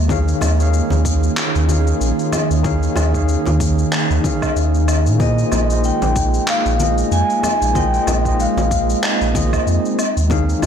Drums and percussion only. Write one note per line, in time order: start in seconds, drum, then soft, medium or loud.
0.09 kick loud
0.09 high conga medium
0.09 shaker soft
0.28 shaker soft
0.41 low conga medium
0.41 low woodblock medium
0.41 shaker medium
0.60 shaker soft
0.74 shaker soft
0.90 high conga medium
0.90 low conga medium
0.90 shaker soft
1.05 kick medium
1.05 shaker medium
1.23 shaker soft
1.37 clap medium
1.37 shaker soft
1.55 shaker soft
1.69 high conga medium
1.69 shaker medium
1.87 shaker soft
2.01 shaker soft
2.19 shaker soft
2.32 low conga medium
2.32 low woodblock medium
2.32 shaker medium
2.51 shaker soft
2.64 kick loud
2.64 high conga medium
2.64 shaker soft
2.83 shaker soft
2.96 low conga medium
2.96 low woodblock medium
2.96 shaker medium
3.14 kick medium
3.14 shaker soft
3.28 shaker soft
3.46 high conga medium
3.46 low conga medium
3.46 shaker soft
3.60 kick loud
3.60 shaker medium
3.79 shaker soft
3.92 clap medium
3.92 shaker soft
4.11 shaker soft
4.24 kick loud
4.24 high conga medium
4.24 shaker medium
4.42 kick medium
4.42 low woodblock medium
4.42 shaker soft
4.56 shaker soft
4.74 shaker soft
4.88 low woodblock medium
4.88 shaker medium
5.06 shaker soft
5.20 kick loud
5.20 high conga medium
5.20 shaker soft
5.38 shaker soft
5.52 low conga medium
5.52 low woodblock medium
5.52 shaker medium
5.70 shaker soft
5.84 shaker soft
6.02 high conga medium
6.02 low conga medium
6.02 shaker soft
6.16 kick loud
6.16 shaker medium
6.34 shaker soft
6.48 clap medium
6.48 shaker soft
6.66 shaker soft
6.80 high conga loud
6.80 shaker medium
6.98 shaker soft
7.12 shaker soft
7.30 shaker soft
7.43 low conga medium
7.43 low woodblock medium
7.43 shaker medium
7.62 shaker soft
7.75 kick loud
7.75 high conga medium
7.75 shaker soft
7.94 shaker soft
8.07 low conga medium
8.07 low woodblock medium
8.07 shaker medium
8.25 kick medium
8.25 shaker soft
8.40 shaker soft
8.57 high conga medium
8.57 low conga medium
8.57 shaker soft
8.71 kick loud
8.71 shaker medium
8.90 shaker soft
9.03 clap medium
9.03 shaker soft
9.21 shaker soft
9.35 kick loud
9.35 high conga loud
9.35 shaker medium
9.53 kick medium
9.53 low woodblock medium
9.53 shaker soft
9.67 shaker soft
9.85 shaker soft
9.99 low woodblock medium
9.99 shaker medium
10.17 shaker soft
10.30 kick loud
10.30 high conga medium
10.30 shaker soft
10.49 shaker soft
10.62 low conga medium
10.62 low woodblock medium
10.62 shaker medium